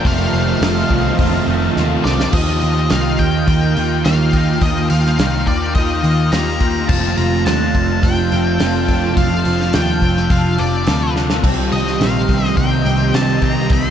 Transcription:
0.04 F1 F2 C3 D#3 F3 A3 C4 F4 D#5 F5 A5, kick, open hi-hat
0.33 F1 A3
0.61 F1 F2 C3 F3 F4, snare, open hi-hat
0.90 C2 F2 C3 D#3 F3 A3 C4, kick
1.19 F1 F2 C3 F3 F4, kick, open hi-hat
1.47 F1 C3 F3 A3
1.76 D#2 F2 C3 D#3 A3 C4 F4, snare
2.04 C2 C3 F3 C4 D5, snare
2.20 snare
2.32 D#2 D#3 F3 A#3 D#4 F4 G4 D#5 G5, kick, crash
2.62 D#2 F3, open hi-hat
2.90 C2 D#3 A#3 D#4 F5, snare, open hi-hat
3.19 D#2 A#3 G5, kick, open hi-hat
3.46 D#2 D#3 A#3 D#4, kick, open hi-hat
3.76 D#2 A#3 D#4, open hi-hat
4.04 D#2 D#3 A#3 D#4 G4 F5, snare, open hi-hat
4.33 D#4, kick, open hi-hat
4.61 D#2 D#3 F3 A#3 D#4 D#5 F5, kick, open hi-hat
4.90 D#2 F3 F5, open hi-hat
5.06 snare
5.18 C2 D#3 A#3 D#4, snare, open hi-hat
5.47 D#2 A#3 D5, kick, open hi-hat
5.74 D#2 D#3 A#3 D#4 D#5, kick, open hi-hat
6.03 D#2 A#3 D#4, open hi-hat
6.32 D#2 D#3 A#3 D#4 G4 A#5, snare, open hi-hat
6.60 D#4, kick, open hi-hat
6.89 F1 F2 C3 F3 A3 C4 F4 A5, kick, crash
7.17 F1 F3 A#5, open hi-hat
7.46 D#2 F2 C3 F3 D4 A5, snare, open hi-hat
7.75 F1 C4, kick, open hi-hat
8.03 F1 F2 C3 F3 D4 G5, kick, open hi-hat
8.32 F1 C3 F3 C4, open hi-hat
8.60 F1 F2 C3 F3 A4, snare, open hi-hat
8.88 D4, kick, open hi-hat
9.17 F1 F2 C3 F3 F5, kick, open hi-hat
9.45 F1 F3, open hi-hat
9.61 snare
9.73 D#2 F2 C3 F3 D4 G5, snare, open hi-hat
10.02 F1 C4, kick, open hi-hat
10.17 snare
10.30 F1 F2 C3 F3 D4 F5, kick, open hi-hat
10.58 F1 C3 F3 C4 D5, open hi-hat
10.87 D2 F2 C3 F3 A4, snare, open hi-hat
11.15 D4, snare
11.30 snare
11.43 C2 C3 D#3 G3 C4 G4 D#5 C6, kick, crash
11.72 C2 C4 D#5, open hi-hat
11.87 snare
12.00 A#1 C3 G3 C4 D#4 F5, snare, open hi-hat
12.29 C2 C4, kick, open hi-hat
12.44 D#5, snare
12.57 C2 C3 G3 C4 D#4 G5, kick, open hi-hat
12.85 C2 G3 C4, open hi-hat
13.14 C2 C3 G3 C4 G4 A5, snare, open hi-hat
13.42 D#4 A#5, kick, open hi-hat
13.70 C2 C3 G3 C4 C6 D6, kick, open hi-hat

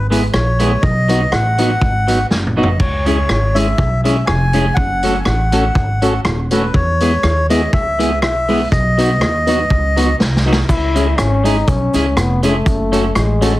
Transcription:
Already playing: G#1
0.10 G#3 B3 E4 G#4 B4, closed hi-hat
0.33 A#1 C#5, cross-stick
0.59 G#3 B3 E4 G#4, closed hi-hat
0.82 B1 D#5, kick
1.08 F#3 B3 D#4 F#4, closed hi-hat
1.32 A1 F#5, cross-stick
1.58 F#3 B3 D#4 F#4, closed hi-hat
1.81 G#1, kick
2.07 F#3 B3 D#4 F#4, closed hi-hat
2.31 F#1, muted clean electric guitar stroke, snare
2.47 mid tom
2.56 F#3 B3 D#4 F#4 D#5
2.63 floor tom
2.79 C#2 C#5, kick, crash
3.06 G#3 C#4 E4 G#4, closed hi-hat
3.29 G#1, cross-stick
3.55 G#3 C#4 E4 G#4 E5, closed hi-hat
3.78 B1, kick
4.04 G#3 C#4 E4 G#4 E5, closed hi-hat
4.26 F1 G#5, cross-stick
4.53 G#3 C#4 E4 G#4, closed hi-hat
4.74 F#1 F#5, kick
5.03 A3 C#4 F#4 A4, closed hi-hat
5.19 G#5
5.25 A1 F#5, cross-stick
5.52 A3 C#4 F#4 A4, closed hi-hat
5.75 G#1, kick
6.02 A3 C#4 F#4 A4, closed hi-hat
6.25 D#1, muted clean electric guitar stroke, cross-stick
6.51 A3 C#4 F#4 A4 B4, closed hi-hat
6.74 E2 C#5, kick
7.00 G#3 B3 E4 G#4, closed hi-hat
7.23 D#2, cross-stick
7.50 G#3 B3 E4 G#4 D#5, closed hi-hat
7.73 C#2 E5, kick
7.99 G#3 B3 E4 G#4, closed hi-hat
8.22 B1 E5, cross-stick
8.48 G#3 B3 E4 G#4, open hi-hat
8.72 B1 D#5, kick, hi-hat pedal
8.98 F#3 B3 D#4 F#4, closed hi-hat
9.21 D#2, cross-stick
9.47 F#3 B3 D#4 F#4, closed hi-hat
9.70 C#2, kick
9.96 F#3 B3 D#4 F#4, closed hi-hat
10.19 C2, muted clean electric guitar stroke, snare
10.36 snare
10.46 F#3 B3 D#4 F#4
10.53 snare
10.69 C#2 E4, kick, crash, cabasa
10.95 G#3 C#4 E4 G#4, closed hi-hat, cabasa
11.18 G#1 C#4, cross-stick, closed hi-hat, cabasa
11.44 G#3 C#4 D#4 E4 G#4, closed hi-hat, cabasa
11.67 B1 C#4, kick, closed hi-hat, cabasa
11.94 C#2 G#3 C#4 E4 G#4, closed hi-hat, cabasa
12.17 F1 B3, cross-stick, closed hi-hat, cabasa
12.43 G#3 A3 C#4 E4 G#4, closed hi-hat, cabasa
12.66 F#1, kick, closed hi-hat, cabasa
12.92 A3 C#4 F#4 A4, closed hi-hat, cabasa
13.15 A1 G#3, cross-stick, closed hi-hat, cabasa
13.41 A3 C#4 F#4 A4, closed hi-hat, cabasa

